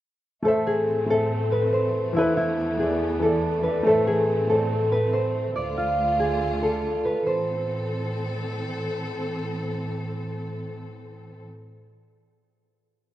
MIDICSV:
0, 0, Header, 1, 4, 480
1, 0, Start_track
1, 0, Key_signature, 0, "minor"
1, 0, Tempo, 425532
1, 514, Time_signature, 4, 2, 24, 8
1, 14822, End_track
2, 0, Start_track
2, 0, Title_t, "Grand piano"
2, 0, Program_c, 0, 0
2, 480, Note_on_c, 0, 57, 88
2, 501, Note_on_c, 0, 69, 87
2, 522, Note_on_c, 0, 72, 83
2, 544, Note_on_c, 0, 76, 101
2, 742, Control_c, 0, 64, 127
2, 943, Note_off_c, 0, 57, 0
2, 953, Note_off_c, 0, 69, 0
2, 964, Note_off_c, 0, 72, 0
2, 975, Note_off_c, 0, 76, 0
2, 1200, Note_on_c, 0, 57, 66
2, 1221, Note_on_c, 0, 69, 67
2, 1242, Note_on_c, 0, 72, 59
2, 1263, Note_on_c, 0, 76, 81
2, 1811, Note_off_c, 0, 57, 0
2, 1822, Note_off_c, 0, 69, 0
2, 1832, Note_off_c, 0, 72, 0
2, 1843, Note_off_c, 0, 76, 0
2, 2401, Note_on_c, 0, 52, 88
2, 2422, Note_on_c, 0, 64, 84
2, 2444, Note_on_c, 0, 69, 79
2, 2449, Control_c, 0, 64, 0
2, 2465, Note_on_c, 0, 71, 100
2, 2667, Control_c, 0, 64, 127
2, 2863, Note_off_c, 0, 52, 0
2, 2874, Note_off_c, 0, 64, 0
2, 2885, Note_off_c, 0, 69, 0
2, 2895, Note_off_c, 0, 71, 0
2, 3124, Note_on_c, 0, 52, 64
2, 3145, Note_on_c, 0, 64, 65
2, 3167, Note_on_c, 0, 69, 66
2, 3189, Note_on_c, 0, 74, 82
2, 3436, Note_off_c, 0, 52, 0
2, 3447, Note_off_c, 0, 64, 0
2, 3458, Note_off_c, 0, 69, 0
2, 3469, Note_off_c, 0, 74, 0
2, 3604, Note_on_c, 0, 52, 74
2, 3626, Note_on_c, 0, 64, 70
2, 3647, Note_on_c, 0, 69, 63
2, 3668, Note_on_c, 0, 74, 83
2, 3916, Note_off_c, 0, 52, 0
2, 3927, Note_off_c, 0, 64, 0
2, 3938, Note_off_c, 0, 69, 0
2, 3948, Note_off_c, 0, 74, 0
2, 4085, Note_on_c, 0, 52, 69
2, 4107, Note_on_c, 0, 64, 60
2, 4128, Note_on_c, 0, 69, 65
2, 4149, Note_on_c, 0, 74, 79
2, 4248, Note_off_c, 0, 52, 0
2, 4259, Note_off_c, 0, 64, 0
2, 4269, Note_off_c, 0, 69, 0
2, 4280, Note_off_c, 0, 74, 0
2, 4321, Note_on_c, 0, 57, 93
2, 4343, Note_on_c, 0, 69, 86
2, 4363, Note_on_c, 0, 72, 76
2, 4368, Control_c, 0, 64, 0
2, 4385, Note_on_c, 0, 76, 101
2, 4593, Control_c, 0, 64, 127
2, 4783, Note_off_c, 0, 57, 0
2, 4794, Note_off_c, 0, 69, 0
2, 4804, Note_off_c, 0, 72, 0
2, 4815, Note_off_c, 0, 76, 0
2, 5046, Note_on_c, 0, 57, 68
2, 5066, Note_on_c, 0, 69, 66
2, 5088, Note_on_c, 0, 72, 68
2, 5110, Note_on_c, 0, 74, 70
2, 5654, Note_off_c, 0, 57, 0
2, 5664, Note_off_c, 0, 69, 0
2, 5675, Note_off_c, 0, 72, 0
2, 5686, Note_off_c, 0, 74, 0
2, 6289, Control_c, 0, 64, 0
2, 14822, End_track
3, 0, Start_track
3, 0, Title_t, "Harp"
3, 0, Program_c, 1, 46
3, 507, Note_on_c, 1, 69, 76
3, 753, Note_on_c, 1, 68, 84
3, 821, Note_off_c, 1, 69, 0
3, 1244, Note_on_c, 1, 69, 87
3, 1312, Note_off_c, 1, 68, 0
3, 1714, Note_on_c, 1, 71, 81
3, 1949, Note_on_c, 1, 72, 77
3, 2017, Note_off_c, 1, 71, 0
3, 2442, Note_on_c, 1, 64, 85
3, 2666, Note_off_c, 1, 64, 0
3, 2671, Note_on_c, 1, 64, 82
3, 3150, Note_on_c, 1, 68, 74
3, 3217, Note_off_c, 1, 69, 0
3, 3635, Note_on_c, 1, 69, 78
3, 3703, Note_off_c, 1, 68, 0
3, 4099, Note_on_c, 1, 71, 83
3, 4166, Note_off_c, 1, 72, 0
3, 4355, Note_off_c, 1, 69, 0
3, 4360, Note_on_c, 1, 69, 84
3, 4591, Note_on_c, 1, 68, 86
3, 4658, Note_off_c, 1, 69, 0
3, 5071, Note_on_c, 1, 69, 86
3, 5138, Note_off_c, 1, 68, 0
3, 5545, Note_off_c, 1, 71, 0
3, 5550, Note_on_c, 1, 71, 80
3, 5617, Note_off_c, 1, 64, 0
3, 5787, Note_on_c, 1, 72, 71
3, 5855, Note_off_c, 1, 71, 0
3, 6267, Note_on_c, 1, 74, 82
3, 6513, Note_on_c, 1, 65, 80
3, 6988, Note_on_c, 1, 68, 76
3, 7055, Note_off_c, 1, 69, 0
3, 7475, Note_on_c, 1, 69, 76
3, 7542, Note_off_c, 1, 68, 0
3, 7955, Note_on_c, 1, 71, 80
3, 8022, Note_off_c, 1, 72, 0
3, 8194, Note_on_c, 1, 72, 81
3, 8261, Note_off_c, 1, 71, 0
3, 8350, Note_off_c, 1, 74, 0
3, 9359, Note_off_c, 1, 65, 0
3, 9952, Note_off_c, 1, 69, 0
3, 10426, Note_off_c, 1, 72, 0
3, 14822, End_track
4, 0, Start_track
4, 0, Title_t, "String section"
4, 0, Program_c, 2, 48
4, 512, Note_on_c, 2, 45, 76
4, 512, Note_on_c, 2, 57, 88
4, 513, Note_on_c, 2, 52, 73
4, 514, Note_on_c, 2, 60, 73
4, 2414, Note_off_c, 2, 45, 0
4, 2415, Note_off_c, 2, 60, 0
4, 2434, Note_on_c, 2, 59, 73
4, 2435, Note_on_c, 2, 40, 78
4, 4335, Note_off_c, 2, 40, 0
4, 4335, Note_off_c, 2, 59, 0
4, 4354, Note_on_c, 2, 45, 82
4, 4355, Note_on_c, 2, 60, 73
4, 6228, Note_off_c, 2, 52, 0
4, 6228, Note_off_c, 2, 57, 0
4, 6255, Note_off_c, 2, 45, 0
4, 6255, Note_off_c, 2, 60, 0
4, 6270, Note_on_c, 2, 57, 73
4, 6271, Note_on_c, 2, 38, 80
4, 6271, Note_on_c, 2, 65, 88
4, 6272, Note_on_c, 2, 50, 73
4, 8173, Note_off_c, 2, 38, 0
4, 8173, Note_off_c, 2, 57, 0
4, 8173, Note_off_c, 2, 65, 0
4, 8174, Note_off_c, 2, 50, 0
4, 8191, Note_on_c, 2, 60, 71
4, 8192, Note_on_c, 2, 45, 79
4, 8192, Note_on_c, 2, 52, 73
4, 8192, Note_on_c, 2, 69, 88
4, 12890, Note_off_c, 2, 45, 0
4, 12890, Note_off_c, 2, 52, 0
4, 12890, Note_off_c, 2, 60, 0
4, 12890, Note_off_c, 2, 69, 0
4, 14822, End_track
0, 0, End_of_file